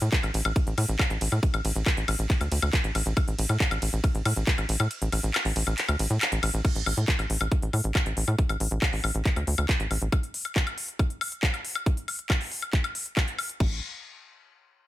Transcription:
0.02 analog synth bass A2, closed hi-hat
0.12 kick, clap, closed hi-hat, ride
0.23 analog synth bass A1, closed hi-hat, high woodblock
0.34 analog synth bass A1, open hi-hat, ride
0.45 analog synth bass A1, high woodblock
0.56 kick, closed hi-hat, ride
0.67 analog synth bass A1, closed hi-hat
0.78 analog synth bass A2, open hi-hat, ride, high woodblock
0.89 analog synth bass A1, closed hi-hat
0.99 kick, clap, closed hi-hat, ride, high woodblock
1.10 analog synth bass A1, closed hi-hat
1.21 analog synth bass A1, open hi-hat, ride
1.32 analog synth bass A2, high woodblock
1.43 kick, closed hi-hat, ride
1.54 analog synth bass A1, closed hi-hat, high woodblock
1.65 analog synth bass A1, open hi-hat, ride
1.76 analog synth bass A1, closed hi-hat
1.86 kick, clap, closed hi-hat, ride, high woodblock
1.97 analog synth bass A1, closed hi-hat
2.08 analog synth bass A1, open hi-hat, ride, high woodblock
2.19 analog synth bass A1, closed hi-hat
2.30 kick, clap, closed hi-hat, ride
2.41 analog synth bass D2, closed hi-hat, high woodblock
2.52 analog synth bass D2, open hi-hat, ride
2.62 analog synth bass D2, closed hi-hat, high woodblock
2.73 kick, clap, closed hi-hat, ride
2.84 analog synth bass A1, closed hi-hat
2.95 analog synth bass A1, open hi-hat, ride, high woodblock
3.06 analog synth bass A1, closed hi-hat
3.17 kick, closed hi-hat, ride, high woodblock
3.28 analog synth bass A1, closed hi-hat
3.39 analog synth bass A1, open hi-hat, ride
3.49 analog synth bass A2, closed hi-hat, high woodblock
3.60 kick, clap, closed hi-hat, ride
3.71 analog synth bass A1, closed hi-hat, high woodblock
3.82 analog synth bass A1, open hi-hat, ride
3.93 analog synth bass A1, closed hi-hat
4.04 kick, closed hi-hat, ride, high woodblock
4.15 analog synth bass A1, closed hi-hat
4.25 analog synth bass A2, open hi-hat, ride, high woodblock
4.36 analog synth bass A1, closed hi-hat
4.47 kick, clap, closed hi-hat, ride
4.58 analog synth bass A1, closed hi-hat, high woodblock
4.69 analog synth bass A1, open hi-hat, ride
4.80 analog synth bass A2, closed hi-hat, high woodblock
4.91 closed hi-hat, ride
5.02 analog synth bass A1, closed hi-hat
5.12 analog synth bass A1, open hi-hat, ride, high woodblock
5.23 analog synth bass A1, closed hi-hat
5.34 clap, closed hi-hat, ride, high woodblock
5.45 analog synth bass A1, open hi-hat
5.56 analog synth bass A1, open hi-hat, ride
5.67 analog synth bass A1, closed hi-hat, high woodblock
5.78 clap, closed hi-hat, ride
5.89 analog synth bass D2, closed hi-hat, high woodblock
5.99 analog synth bass A1, open hi-hat, ride
6.10 analog synth bass A2, closed hi-hat
6.21 clap, closed hi-hat, ride, high woodblock
6.32 analog synth bass A1, closed hi-hat
6.43 analog synth bass A1, open hi-hat, ride, high woodblock
6.54 analog synth bass A1, closed hi-hat
6.65 kick, closed hi-hat, crash, high woodblock
6.75 analog synth bass A1, closed hi-hat
6.86 analog synth bass A1, open hi-hat, high woodblock
6.97 analog synth bass A2, closed hi-hat
7.08 kick, clap, closed hi-hat
7.19 analog synth bass A1, closed hi-hat, high woodblock
7.30 analog synth bass A1, open hi-hat
7.41 analog synth bass A1, closed hi-hat, high woodblock
7.52 kick, closed hi-hat
7.62 analog synth bass A1, closed hi-hat
7.73 analog synth bass A2, open hi-hat, high woodblock
7.84 analog synth bass A1, closed hi-hat
7.95 kick, clap, closed hi-hat, high woodblock
8.06 analog synth bass A1, closed hi-hat
8.17 analog synth bass A1, open hi-hat
8.28 analog synth bass A2, closed hi-hat, high woodblock
8.39 kick, closed hi-hat
8.49 analog synth bass A1, closed hi-hat, high woodblock
8.60 analog synth bass A1, open hi-hat
8.71 analog synth bass A1, closed hi-hat
8.82 kick, clap, closed hi-hat, high woodblock
8.93 analog synth bass A1, open hi-hat
9.04 analog synth bass A1, open hi-hat, high woodblock
9.15 analog synth bass A1, closed hi-hat
9.25 kick, clap, closed hi-hat
9.36 analog synth bass D2, closed hi-hat, high woodblock
9.47 analog synth bass D2, open hi-hat
9.58 analog synth bass D2, closed hi-hat, high woodblock
9.69 kick, clap, closed hi-hat
9.80 analog synth bass A1, closed hi-hat
9.91 analog synth bass A1, open hi-hat, high woodblock
10.02 analog synth bass A1, closed hi-hat
10.12 kick, closed hi-hat, high woodblock
10.23 closed hi-hat
10.34 open hi-hat
10.45 closed hi-hat, high woodblock
10.56 kick, clap, closed hi-hat
10.67 closed hi-hat, high woodblock
10.78 open hi-hat
10.89 closed hi-hat
10.99 kick, closed hi-hat, high woodblock
11.10 closed hi-hat
11.21 open hi-hat, high woodblock
11.32 closed hi-hat
11.43 kick, clap, closed hi-hat
11.54 closed hi-hat, high woodblock
11.65 open hi-hat
11.75 closed hi-hat, high woodblock
11.86 kick, closed hi-hat
11.97 closed hi-hat
12.08 open hi-hat, high woodblock
12.19 closed hi-hat
12.30 kick, clap, closed hi-hat, high woodblock
12.41 open hi-hat
12.52 open hi-hat
12.62 closed hi-hat, high woodblock
12.73 kick, clap, closed hi-hat
12.84 closed hi-hat, high woodblock
12.95 open hi-hat
13.06 closed hi-hat
13.17 kick, clap, closed hi-hat, high woodblock
13.28 closed hi-hat
13.39 open hi-hat, high woodblock
13.49 closed hi-hat
13.60 analog synth bass A1, kick, crash

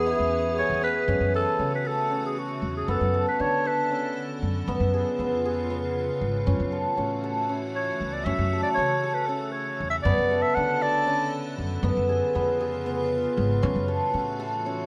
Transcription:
Already playing: upright bass E2, ambient pad E3 C#4 G#4, hammered dulcimer B3 C#4 F#4 G#4 B4, clarinet G#4
0.07 hammered dulcimer E4
0.19 upright bass E2
0.58 hammered dulcimer G#4, clarinet C#5
0.70 upright bass E2
0.83 hammered dulcimer B3, clarinet B4
1.08 upright bass F#2, ambient pad C#3 A3 F#4, hammered dulcimer C#4
1.20 upright bass F#2
1.34 hammered dulcimer A4, clarinet A4
1.59 upright bass C#3, hammered dulcimer C#4
1.75 clarinet B4
1.85 hammered dulcimer A4, clarinet A4
2.11 hammered dulcimer C#4
2.26 clarinet G#4
2.39 clarinet F#4
2.62 upright bass E2
2.77 clarinet G#4
2.88 upright bass F#2, ambient pad D3 B3 A4, hammered dulcimer B3, clarinet A4
3.01 upright bass F#2
3.14 hammered dulcimer A4
3.28 clarinet B4
3.39 upright bass D3, hammered dulcimer D4, clarinet C#5
3.65 hammered dulcimer A4, clarinet B4
3.91 hammered dulcimer C#4
4.42 upright bass F#2
4.67 upright bass F#2, ambient pad C#3 F4, hammered dulcimer B3
4.80 upright bass F#2
4.94 hammered dulcimer G#4
5.19 upright bass F2, hammered dulcimer B3
5.45 hammered dulcimer G#4
5.70 hammered dulcimer B3
6.21 upright bass G#1
6.47 upright bass F#2, ambient pad E3 A3 F#4, hammered dulcimer C#4
6.60 upright bass F#2
6.72 hammered dulcimer A4
6.97 upright bass A2, hammered dulcimer C#4
7.24 hammered dulcimer A4
7.49 hammered dulcimer C#4
7.75 clarinet C#5
8.01 upright bass C#2
8.13 clarinet D5
8.24 upright bass F#2, ambient pad C#3, hammered dulcimer C#4, clarinet E5
8.38 upright bass F#2
8.53 hammered dulcimer A4
8.63 clarinet D5
8.74 upright bass C#3, hammered dulcimer C#4, clarinet C#5
9.03 hammered dulcimer A4
9.14 clarinet B4
9.27 hammered dulcimer C#4, clarinet A4
9.52 clarinet C#5
9.80 upright bass E2
9.90 clarinet E5
10.02 upright bass F#2, hammered dulcimer B3, ambient pad B3 A4, clarinet D5
10.07 ambient pad D3
10.18 upright bass F#2
10.31 hammered dulcimer A4
10.42 clarinet E5
10.55 upright bass D3, hammered dulcimer D4, clarinet F#5
10.82 hammered dulcimer A4, clarinet D5
11.07 hammered dulcimer C#4
11.58 upright bass F#2
11.83 upright bass F#2, ambient pad C#3 B3 F4, hammered dulcimer B3
11.97 upright bass F#2
12.09 hammered dulcimer G#4
12.35 upright bass F2, hammered dulcimer B3
12.60 hammered dulcimer G#4
12.86 hammered dulcimer B3
13.37 upright bass G#1
13.62 upright bass F#2, ambient pad E3 A3 F#4, hammered dulcimer C#4
13.76 upright bass F#2
13.88 hammered dulcimer A4
14.14 upright bass A2, hammered dulcimer C#4
14.40 hammered dulcimer A4
14.66 hammered dulcimer C#4

